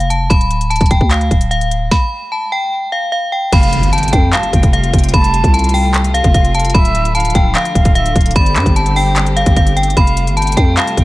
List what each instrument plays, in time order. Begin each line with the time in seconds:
Already playing: 808-style bass F1
0.00 closed hi-hat
0.10 synth bell A5, closed hi-hat
0.30 808-style bass D1, synth bell B5, kick, closed hi-hat
0.41 closed hi-hat
0.51 closed hi-hat
0.61 closed hi-hat
0.70 synth bell A5, closed hi-hat
0.76 closed hi-hat
0.81 808-style bass D1, kick, closed hi-hat
0.86 closed hi-hat
0.91 808-style bass D1, synth bell G5, kick, closed hi-hat
1.01 808-style bass D2, kick
1.11 synth bell F5, clap, closed hi-hat
1.21 closed hi-hat
1.31 808-style bass D1, kick, closed hi-hat
1.41 closed hi-hat
1.51 synth bell F5, closed hi-hat
1.61 closed hi-hat
1.71 closed hi-hat
1.91 synth bell B5, kick, snare
2.32 synth bell A5
2.52 synth bell G5
2.92 synth bell F5
3.12 synth bell F5
3.32 synth bell G5
3.52 808-style bass F1, string section C3 G3 A3 F4, flute F5, synth bell B5, kick, closed hi-hat, crash, impact
3.63 closed hi-hat
3.73 closed hi-hat
3.83 808-style bass G1, closed hi-hat
3.93 flute G5, synth bell A5, closed hi-hat
3.98 closed hi-hat
4.03 closed hi-hat
4.08 closed hi-hat
4.13 808-style bass F2, synth bell G5, kick, closed hi-hat
4.33 synth bell F5, flute A5, clap, closed hi-hat
4.43 closed hi-hat
4.53 808-style bass F1, flute G5, kick, closed hi-hat
4.63 kick, closed hi-hat
4.73 synth bell F5, flute F5, closed hi-hat
4.84 closed hi-hat
4.93 808-style bass F1, flute G5, kick, closed hi-hat
4.99 closed hi-hat
5.04 closed hi-hat
5.09 closed hi-hat
5.14 808-style bass F1, flute A5, synth bell B5, kick, closed hi-hat
5.24 closed hi-hat
5.34 closed hi-hat
5.44 808-style bass C2, kick, closed hi-hat
5.54 synth bell A5, closed hi-hat
5.59 closed hi-hat
5.64 closed hi-hat
5.69 closed hi-hat
5.74 synth bell G5, open hi-hat
5.94 clap, closed hi-hat
6.04 closed hi-hat
6.14 synth bell F5, closed hi-hat
6.24 808-style bass F1, kick, closed hi-hat
6.34 synth bell F5, kick, closed hi-hat
6.45 closed hi-hat
6.55 flute F5, synth bell A5, closed hi-hat
6.60 closed hi-hat
6.65 closed hi-hat
6.70 closed hi-hat
6.74 808-style bass D1, string section D3 F3, flute E5, synth bell B5, kick, closed hi-hat
6.85 closed hi-hat
6.95 closed hi-hat
7.05 closed hi-hat
7.15 flute F5, synth bell A5, closed hi-hat
7.20 closed hi-hat
7.25 closed hi-hat
7.30 closed hi-hat
7.35 808-style bass D1, synth bell G5, kick, closed hi-hat
7.55 synth bell F5, flute G5, clap, closed hi-hat
7.65 closed hi-hat
7.75 808-style bass D1, flute F5, kick, closed hi-hat
7.85 kick, closed hi-hat
7.95 flute E5, synth bell F5, closed hi-hat
8.06 closed hi-hat
8.16 808-style bass D1, flute F5, kick, closed hi-hat
8.21 closed hi-hat
8.26 closed hi-hat
8.31 closed hi-hat
8.36 808-style bass G1, string section G3 C4 G4, flute D5, synth bell B5, kick, closed hi-hat
8.46 closed hi-hat
8.56 808-style bass G2, clap, closed hi-hat
8.66 808-style bass G1, kick, closed hi-hat
8.76 synth bell A5, closed hi-hat
8.86 closed hi-hat
8.96 synth bell G5, open hi-hat
9.16 clap, closed hi-hat
9.26 closed hi-hat
9.36 synth bell F5, closed hi-hat
9.46 808-style bass G1, kick, closed hi-hat
9.56 synth bell F5, kick, closed hi-hat
9.67 closed hi-hat
9.77 synth bell G5, closed hi-hat
9.83 closed hi-hat
9.90 closed hi-hat
9.97 808-style bass F1, string section C3 G3 A3 F4, flute F5, synth bell B5, kick, closed hi-hat
10.07 closed hi-hat
10.17 closed hi-hat
10.27 808-style bass G1, closed hi-hat
10.37 flute G5, synth bell A5, closed hi-hat
10.42 closed hi-hat
10.47 closed hi-hat
10.52 closed hi-hat
10.57 808-style bass F2, synth bell G5, kick, closed hi-hat
10.77 synth bell F5, flute A5, clap, closed hi-hat
10.87 closed hi-hat
10.97 808-style bass F1, flute G5, kick, closed hi-hat